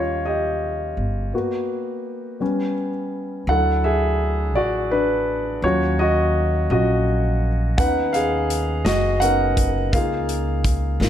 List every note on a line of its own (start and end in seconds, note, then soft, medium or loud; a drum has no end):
0.00 0.93 D#2 medium
0.00 1.35 G3 soft
0.00 1.35 C#4 soft
0.00 1.35 F4 medium
0.00 0.27 G4 medium
0.00 1.35 C#5 medium
0.00 0.25 D#5 medium
0.25 2.73 G4 soft
0.25 2.72 D#5 medium
0.97 1.31 G1 medium
1.34 2.37 A#3 soft
1.34 2.37 B3 soft
1.34 2.37 F#4 soft
2.40 2.88 G3 soft
2.40 2.88 B3 soft
2.40 2.89 C#4 soft
3.47 4.55 D2 medium
3.47 5.59 F#3 soft
3.47 4.91 D4 soft
3.47 5.60 E4 soft
3.47 3.82 A4 medium
3.47 3.85 F#5 medium
3.84 4.52 G#4 medium
3.84 4.58 E5 medium
4.55 5.59 A1 medium
4.55 4.89 F#4 medium
4.55 4.92 D5 medium
4.91 5.60 D4 medium
4.91 5.65 B4 medium
5.62 6.66 D#2 medium
5.62 6.67 F#3 soft
5.62 6.67 C#4 soft
5.62 6.68 F4 soft
5.62 5.98 F#4 medium
5.62 6.00 C#5 medium
5.99 6.67 F#4 medium
5.99 6.67 D#5 medium
6.70 7.74 A#1 medium
6.70 7.03 F#3 soft
6.70 7.03 C#4 soft
6.70 7.04 F4 soft
6.70 7.48 F#4 medium
6.70 7.47 D#5 medium
7.78 8.81 D#2 medium
7.78 9.20 B3 soft
7.78 9.20 C#4 soft
7.78 9.20 D#4 medium
7.78 8.12 B4 medium
7.78 8.15 F#5 medium
7.78 kick loud
7.78 closed hi-hat medium
8.13 8.82 G#4 medium
8.13 8.87 F5 medium
8.13 closed hi-hat soft
8.50 closed hi-hat medium
8.85 9.89 F#1 medium
8.85 9.19 F#4 medium
8.85 9.22 D#5 medium
8.85 snare loud
8.85 closed hi-hat medium
9.20 9.54 B3 soft
9.20 9.54 C#4 soft
9.20 9.54 D#4 soft
9.20 9.89 A#4 medium
9.20 9.94 F#5 medium
9.20 closed hi-hat medium
9.57 kick medium
9.57 closed hi-hat medium
9.93 10.96 C#2 medium
9.93 10.96 A#3 soft
9.93 10.97 D#4 soft
9.93 10.97 F4 medium
9.93 11.09 G#4 medium
9.93 11.09 F5 medium
9.93 kick loud
9.93 closed hi-hat medium
10.29 closed hi-hat soft
10.64 kick medium
10.64 closed hi-hat medium
11.00 11.09 G#1 medium
11.00 11.09 A#3 soft
11.00 11.09 D#4 soft
11.00 11.09 F4 medium
11.00 snare medium